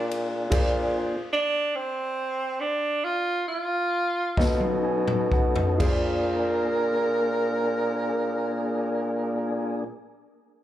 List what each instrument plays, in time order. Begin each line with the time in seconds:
Already playing: bassoon A#2, tonewheel organ A#3 D4 G#4, upright piano F4 G#4 D5
0.11 ride
0.50 bassoon A#2, tonewheel organ A#3 D4 G#4, upright piano F4 G#4 C5 D5, kick, crash, ride
1.33 tenor saxophone D4
1.75 tenor saxophone C4
2.60 tenor saxophone D4
3.04 tenor saxophone F4
3.48 tenor saxophone F4
4.37 bassoon B2, tonewheel organ C#4 D#4 A4, upright piano D#4 A4 C#5 D#5, kick, snare
4.60 high tom
4.85 upright piano G#5
5.08 mid tom
5.32 upright piano F#5, kick
5.56 floor tom
5.78 bassoon A#2, tonewheel organ A#3 D4 G#4, upright piano F4 G#4 C5, tenor saxophone A#4, kick, crash
5.82 upright piano D5